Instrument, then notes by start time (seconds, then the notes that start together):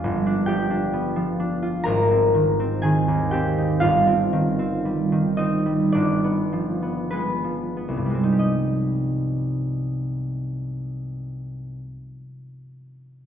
harp
Already playing: F3 D4 F4
0.04 G1
0.26 D4
0.46 F3 G4 G5
0.70 D4
0.93 B3
1.16 F3
1.40 D4
1.62 F4
1.84 G#1 A#4 A#5
2.11 C4
2.35 D#3
2.60 C4
2.82 D#3 G#4 G#5
3.08 D#2
3.31 C4 G4 G5
3.58 D#4
3.80 G1 F4 F5
4.07 C4
4.33 D#3
4.59 C4
4.85 G3
5.12 D#3
5.37 C4 D#4 D#5
5.66 G3
5.92 G1 D4 D5
6.24 B3
6.53 F3
6.82 B3
7.11 G#3 B3 B4
7.44 F3
7.77 B3
7.88 C2
7.97 G2
8.06 G3
8.10 G#3
8.15 C4
8.24 D#4
8.33 G4
8.39 D#5